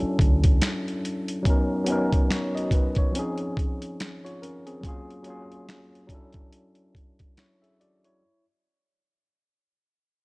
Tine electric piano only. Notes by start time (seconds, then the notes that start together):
Already playing: F#3 C#4 D4 E4 A4
1.42 F#3 B3 C#4
1.48 D#4 A#4
1.85 F#3 B3 C#4
1.90 D#4 A#4
2.31 C#5
2.55 F#4 D#5
2.73 D#4 B4
2.98 C#5
3.12 F3 C4 C#4
3.17 D#4 G#4
4.25 F4 C#5
4.42 C#4 A#4
4.66 C4 G#4
4.81 F#3 A#3 C#4
4.86 F4 G#4
5.23 F#3 A#3 C#4
5.28 F4 G#4
6.07 F#3 C#4 D4
6.13 E4 A4
7.38 E4 C#5
7.62 G#4 E5
7.80 F#4 D5
8.05 E4 C#5